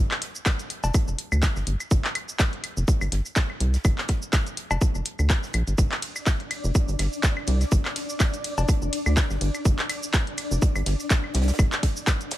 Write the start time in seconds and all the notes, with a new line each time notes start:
0.11 clap, closed hi-hat, claves
0.22 snare, closed hi-hat
0.35 shaker
0.45 kick, snare, clap, closed hi-hat, claves, shaker
0.59 closed hi-hat, shaker
0.70 closed hi-hat
0.84 F1, cowbell, shaker
0.94 kick, closed hi-hat, claves, shaker
1.08 F1, shaker
1.18 closed hi-hat
1.32 D2, claves, shaker
1.43 kick, snare, clap, closed hi-hat, shaker
1.56 G1, snare, shaker
1.67 G1, closed hi-hat
1.80 closed hi-hat, claves, shaker
1.91 G1, kick, closed hi-hat, shaker
2.05 clap, closed hi-hat
2.15 closed hi-hat, claves
2.29 shaker
2.39 kick, snare, clap, closed hi-hat, shaker
2.53 closed hi-hat
2.64 closed hi-hat, claves
2.77 F1, shaker
2.88 kick, closed hi-hat, shaker
3.01 G1, closed hi-hat, claves, shaker
3.12 G1, snare, closed hi-hat
3.25 closed hi-hat, shaker
3.36 kick, snare, clap, closed hi-hat, shaker
3.50 claves
3.60 C2, closed hi-hat
3.74 snare, closed hi-hat, shaker
3.85 G1, kick, closed hi-hat, claves, shaker
3.98 clap, closed hi-hat
4.08 kick, snare, closed hi-hat
4.22 shaker
4.33 kick, snare, clap, closed hi-hat, claves, shaker
4.47 closed hi-hat, shaker
4.57 closed hi-hat
4.71 F1, cowbell, claves, shaker
4.81 kick, closed hi-hat, shaker
4.95 F1, shaker
5.05 closed hi-hat
5.19 D2, claves, shaker
5.30 kick, snare, clap, closed hi-hat, shaker
5.43 snare, shaker
5.53 A#1, closed hi-hat, claves
5.67 G1, closed hi-hat, shaker
5.78 G1 D4 D5, kick, closed hi-hat, shaker
5.92 clap, closed hi-hat
6.02 closed hi-hat, ride
6.16 claves, shaker
6.26 kick, snare, clap, closed hi-hat, shaker
6.40 closed hi-hat
6.51 closed hi-hat, ride, claves
6.64 F1, shaker
6.75 kick, closed hi-hat, shaker
6.88 G1, closed hi-hat, shaker
6.99 G1, snare, closed hi-hat, ride, claves
7.13 closed hi-hat, shaker
7.23 kick, snare, clap, closed hi-hat, shaker
7.37 claves
7.47 C2, closed hi-hat, ride
7.61 snare, closed hi-hat, shaker
7.71 G1, kick, closed hi-hat, shaker
7.85 clap, closed hi-hat, claves
7.96 snare, closed hi-hat, ride
8.09 shaker
8.20 kick, snare, clap, closed hi-hat, claves, shaker
8.34 closed hi-hat, shaker
8.44 closed hi-hat, ride
8.58 F1, cowbell, shaker
8.69 kick, closed hi-hat, claves, shaker
8.82 F1, shaker
8.93 closed hi-hat, ride
9.06 D2, claves, shaker
9.17 kick, snare, clap, closed hi-hat, shaker
9.30 G1, snare, shaker
9.41 G1, closed hi-hat, ride
9.55 closed hi-hat, claves, shaker
9.65 G1, kick, closed hi-hat, shaker
9.78 clap, closed hi-hat
9.89 closed hi-hat, ride, claves
10.03 shaker
10.14 kick, snare, clap, closed hi-hat, shaker
10.27 closed hi-hat
10.37 closed hi-hat, ride, claves
10.51 F1, shaker
10.62 kick, closed hi-hat, shaker
10.76 G1, closed hi-hat, claves, shaker
10.86 G1, snare, closed hi-hat, ride
11.00 closed hi-hat, shaker
11.10 kick, snare, clap, closed hi-hat, shaker
11.24 claves
11.34 C2, snare, closed hi-hat, ride
11.42 snare, closed hi-hat
11.48 snare, closed hi-hat, shaker
11.54 snare, closed hi-hat
11.59 G1, kick, closed hi-hat, claves, shaker
11.72 clap, closed hi-hat, shaker
11.83 kick, snare, closed hi-hat, ride
11.97 shaker
12.07 kick, snare, clap, closed hi-hat, claves, shaker
12.21 closed hi-hat, shaker
12.31 snare, closed hi-hat, ride